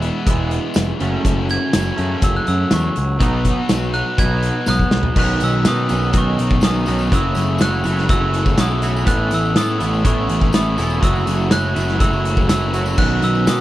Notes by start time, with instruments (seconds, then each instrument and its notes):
Already playing: clean electric guitar E3 G#3 B3 E4
0.02 overdriven electric guitar E3 G#3 B3 E4, closed hi-hat
0.26 picked electric bass E1, clean electric guitar E3 G#3 B3 E4, kick, closed hi-hat
0.51 closed hi-hat
0.74 picked electric bass F1, snare, closed hi-hat, tambourine
1.00 picked electric bass F#1, clean electric guitar F#2 C#3 F#3 A3 C#4, closed hi-hat
1.25 picked electric bass F#1, kick, closed hi-hat
1.49 glockenspiel G#6, closed hi-hat
1.73 picked electric bass F#1, overdriven electric guitar F#2 C#3 F#3 A3 C#4, snare, closed hi-hat, tambourine
1.96 clean electric guitar F#2 C#3 F#3 A3 C#4, picked electric bass F#2, closed hi-hat
2.22 picked electric bass F#1, glockenspiel E6, kick, closed hi-hat
2.37 glockenspiel F#6
2.47 picked electric bass F#2, glockenspiel E6, closed hi-hat
2.71 picked electric bass E2, glockenspiel C#6, snare, closed hi-hat, tambourine
2.96 picked electric bass C#2, closed hi-hat
3.19 picked electric bass B1, clean electric guitar B2 F#3 B3 D#4, kick, closed hi-hat
3.45 kick, closed hi-hat
3.69 picked electric bass B1, snare, closed hi-hat, tambourine
3.94 overdriven electric guitar B2 F#3 B3 D#4, glockenspiel F#6, closed hi-hat
4.18 picked electric bass B1, clean electric guitar B2 F#3 B3 D#4, glockenspiel G#6, kick, closed hi-hat
4.43 closed hi-hat
4.66 picked electric bass B1, glockenspiel D#6 F#6, snare, tambourine
4.79 kick
4.91 picked electric bass B1, snare
5.03 floor tom
5.16 picked electric bass B1, clean electric guitar B2 D#3 F#3 C#4 D#4, overdriven electric guitar B3, glockenspiel F#6, kick, crash, tambourine
5.40 picked electric bass B1, glockenspiel E6, closed hi-hat, tambourine
5.65 clean electric guitar B2 D#3 F#3 C#4 D#4, picked electric bass B2, overdriven electric guitar B3, glockenspiel D#6, snare, closed hi-hat, tambourine
5.76 tambourine
5.88 picked electric bass B1, clean electric guitar B2 D#3 F#3 C#4 D#4, overdriven electric guitar B3, closed hi-hat, tambourine
6.02 tambourine
6.12 picked electric bass B1, clean electric guitar B2 D#3 F#3 C#4 D#4, overdriven electric guitar B3, kick, closed hi-hat, tambourine
6.18 glockenspiel C#6
6.38 picked electric bass B1, closed hi-hat, tambourine
6.49 kick, tambourine
6.61 picked electric bass B1, clean electric guitar B2 D#3 F#3 C#4 D#4, overdriven electric guitar B3, glockenspiel D#6, snare, closed hi-hat, tambourine
6.74 tambourine
6.86 picked electric bass B1, clean electric guitar B2 D#3 F#3 C#4 D#4, overdriven electric guitar B3, closed hi-hat, tambourine
6.99 tambourine
7.11 picked electric bass F#1, overdriven electric guitar F#2 C#3 C#4, clean electric guitar F#3 A3 E4 F#4 C#5, glockenspiel E6, kick, closed hi-hat, tambourine
7.35 picked electric bass F#1, closed hi-hat, tambourine
7.47 tambourine
7.58 picked electric bass F#1, overdriven electric guitar F#2 C#3, clean electric guitar F#3 A3 E4 F#4 C#5, glockenspiel F#6, snare, closed hi-hat, tambourine
7.63 overdriven electric guitar C#4
7.72 tambourine
7.84 picked electric bass F#1, overdriven electric guitar F#2 C#3 C#4, clean electric guitar F#3 A3 E4 F#4 C#5, closed hi-hat, tambourine
7.97 snare, tambourine
8.08 picked electric bass F#1, overdriven electric guitar F#2 C#3 C#4, clean electric guitar F#3 A3 E4 F#4 C#5, glockenspiel E6, kick, closed hi-hat, tambourine
8.34 closed hi-hat, tambourine
8.46 kick, tambourine
8.57 picked electric bass B1, overdriven electric guitar F#2 C#3 C#4, clean electric guitar F#3 A3 E4 F#4 C#5, glockenspiel D#6, snare, closed hi-hat, tambourine
8.71 tambourine
8.82 overdriven electric guitar F#2 C#3 C#4, clean electric guitar F#3 A3 E4 F#4 C#5, closed hi-hat, tambourine
8.96 tambourine
9.05 picked electric bass A1, overdriven electric guitar A2 E3 C#4, clean electric guitar A3 B3 E4 A4 C#5, glockenspiel F#6, kick, closed hi-hat
9.31 picked electric bass A1, glockenspiel E6, closed hi-hat, tambourine
9.45 tambourine
9.55 overdriven electric guitar A2 E3 C#4, picked electric bass A2, clean electric guitar A3 B3 E4 A4 C#5, glockenspiel D#6, snare, closed hi-hat, tambourine
9.70 tambourine
9.78 picked electric bass A1, overdriven electric guitar A2 E3 C#4, clean electric guitar A3 B3 E4 A4 C#5, closed hi-hat, tambourine
9.94 tambourine
10.03 picked electric bass A1, overdriven electric guitar A2 E3 C#4, clean electric guitar A3 B3 E4 A4 C#5, glockenspiel C#6, kick, closed hi-hat, tambourine
10.29 picked electric bass A1, closed hi-hat, tambourine
10.41 kick, tambourine
10.53 picked electric bass A1, overdriven electric guitar A2 E3 C#4, clean electric guitar A3 B3 E4 A4 C#5, glockenspiel D#6, snare, closed hi-hat, tambourine
10.66 tambourine
10.77 picked electric bass E1, overdriven electric guitar A2 E3 C#4, clean electric guitar A3 B3 E4 A4 C#5, closed hi-hat, tambourine
10.90 tambourine
11.00 picked electric bass F#1, clean electric guitar F#3 A3 E4 F#4 C#5, overdriven electric guitar C#4, glockenspiel E6, kick, closed hi-hat, tambourine
11.15 tambourine
11.27 picked electric bass F#1, closed hi-hat, tambourine
11.40 tambourine
11.50 picked electric bass F#1, clean electric guitar F#3 A3 E4 F#4 C#5, overdriven electric guitar C#4, glockenspiel F#6, snare, closed hi-hat, tambourine
11.74 picked electric bass F#1, clean electric guitar F#3 A3 E4 F#4 C#5, overdriven electric guitar C#4, closed hi-hat, tambourine
11.88 snare, tambourine
11.98 picked electric bass F#1, clean electric guitar F#3 A3 E4 F#4 C#5, overdriven electric guitar C#4, glockenspiel E6, kick, closed hi-hat, tambourine
12.13 tambourine
12.25 closed hi-hat, tambourine
12.36 kick, tambourine
12.47 picked electric bass F#1, clean electric guitar F#3 A3 E4 F#4 C#5, overdriven electric guitar C#4, glockenspiel E6, snare, closed hi-hat, tambourine
12.62 tambourine
12.73 clean electric guitar F#3 A3 E4 F#4 C#5, overdriven electric guitar C#4, closed hi-hat, tambourine
12.86 tambourine
12.97 picked electric bass B1, clean electric guitar B2 D#3 B3 C#4 F#4, overdriven electric guitar F#3 D#4, glockenspiel F#6, kick, crash, tambourine
13.22 picked electric bass B1, glockenspiel E6, closed hi-hat
13.35 tambourine
13.46 clean electric guitar B2 D#3 B3 C#4 F#4, picked electric bass B2, overdriven electric guitar F#3 D#4, glockenspiel D#6, snare, closed hi-hat, tambourine